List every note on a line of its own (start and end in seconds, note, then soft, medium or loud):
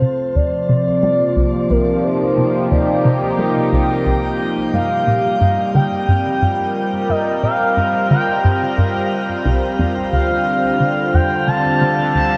0.00 4.73 C3 medium
0.00 0.26 C3 medium
0.00 4.73 F3 medium
0.00 1.50 C4 medium
0.00 0.85 F4 medium
0.00 1.50 A4 medium
0.00 0.37 C5 loud
0.35 0.51 D#2 medium
0.35 1.72 D5 loud
0.61 6.26 A#3 medium
0.69 0.85 C3 medium
0.76 6.43 G4 medium
1.03 1.12 G3 loud
1.28 4.74 D#4 medium
1.36 1.52 C2 medium
1.70 1.94 C2 medium
1.70 2.05 A#4 medium
2.04 2.73 C5 loud
2.38 2.62 C3 medium
2.71 2.87 D#2 medium
2.71 3.39 D5 medium
3.05 3.21 C3 medium
3.38 3.48 G3 medium
3.72 3.88 C2 medium
4.06 4.30 C2 medium
4.73 4.98 G2 medium
4.73 12.37 G3 medium
4.73 5.71 F5 loud
5.07 5.23 A#2 medium
5.39 5.57 G2 medium
5.39 12.37 C4 medium
5.75 5.84 D3 loud
5.75 7.11 G5 loud
5.89 12.37 F4 medium
6.08 6.24 G2 medium
6.42 6.66 G2 medium
6.47 10.13 A#4 medium
7.09 7.34 G2 medium
7.09 7.43 D#5 medium
7.43 7.59 A#2 medium
7.43 8.07 F5 loud
7.77 7.93 G2 medium
8.11 8.20 D3 loud
8.11 8.74 G5 medium
8.44 8.60 G2 medium
8.78 9.02 G2 medium
9.45 9.61 C2 loud
9.79 10.03 F2 medium
10.13 10.37 D2 medium
10.13 12.37 D3 medium
10.13 11.16 F5 loud
10.80 11.04 D3 medium
11.14 11.30 F2 medium
11.14 11.49 G5 loud
11.48 11.64 D3 medium
11.48 12.15 A5 loud
11.81 11.97 D3 medium
12.15 12.31 D2 medium
12.15 12.37 A5 loud